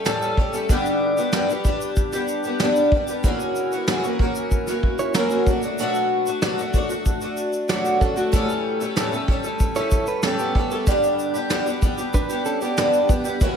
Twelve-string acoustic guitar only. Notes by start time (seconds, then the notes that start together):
0.05 A2 E3 G3 A3 C#4 A4
0.37 G3 A3 C#4 A4
0.53 G3 A3 C#4 A4
0.69 G2 D3 G3 B3 D4 G4
1.17 G3 B3 D4 G4
1.33 G2 D3 G3 B3 D4 G4
1.49 G3 B3 D4 G4
1.65 G3 B3 D4 G4
2.13 G3 B3 D4 G4
2.45 G3 B3 D4 G4
2.61 G2 D3 G3 B3 D4 G4
2.93 G3 B3 D4 G4
3.08 G3 B3 D4 G4
3.24 F#2 C#3 E3 A#3 C#4 F#4
3.72 E3 A#3 C#4 F#4
3.88 F#2 C#3 E3 A#3 C#4 F#4
4.03 E3 A#3 C#4 F#4
4.20 E3 A#3 C#4 F#4
4.68 E3 A#3 C#4 F#4
5.16 F#2 C#3 E3 A#3 C#4 F#4
5.47 F#3 A3 D4 F#4
5.63 A3 D4 F#4
5.79 B2 F#3 A3 D4 F#4
6.27 A3 D4 F#4
6.42 B2 F#3 A3 D4 F#4
6.58 A3 D4 F#4
6.74 F#3 A3 D4 F#4
6.89 A3 D4 F#4
7.22 A3 D4 F#4
7.69 B2 F#3 A3 D4 F#4
8.00 F#3 A3 D4 F#4
8.16 A3 D4 F#4
8.32 A2 E3 G3 A3 C#4 A4
8.80 G3 A3 C#4 A4
8.96 A2 E3 G3 A3 C#4 A4
9.12 G3 A3 C#4 A4
9.28 G3 A3 C#4 A4
9.44 G3 A3 C#4 A4
9.76 G3 A3 C#4 A4
10.23 A2 E3 G3 A3 C#4 A4
10.55 G3 A3 C#4 A4
10.71 G3 A3 C#4 A4
10.87 G2 D3 G3 B3 D4 G4
11.34 G3 B3 D4 G4
11.50 G2 D3 G3 B3 D4 G4
11.66 G3 B3 D4 G4
11.81 G3 B3 D4 G4
11.98 G3 B3 D4 G4
12.29 G3 B3 D4 G4
12.61 G3 B3 D4 G4
12.77 G2 D3 G3 B3 D4 G4
13.09 G3 B3 D4 G4
13.25 G3 B3 D4 G4
13.41 F#2 C#3 E3 A#3 C#4 F#4